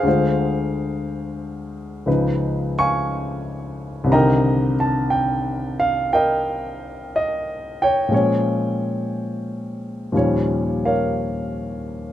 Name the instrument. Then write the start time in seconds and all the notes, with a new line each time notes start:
grand piano
Already playing: G#4 F5
0.03 D2 D3 G#3
0.07 F4 C5
2.06 C#2 C#3 F3 D#4 B4
2.79 F5 G#5 C#6
4.04 C2 C3
4.09 D3 D#3 D#5 G5 A#5
4.15 A#4
4.80 A5
5.10 G5
5.80 F5
6.13 A#4 D#5 G5
7.16 D#5
7.82 C#5 G5
8.09 A#2 F3 G#3 C#4
8.14 C#5
10.12 D#2 A#2 F3 G3 C#4
10.17 C#5
10.85 A#4 C#5 F5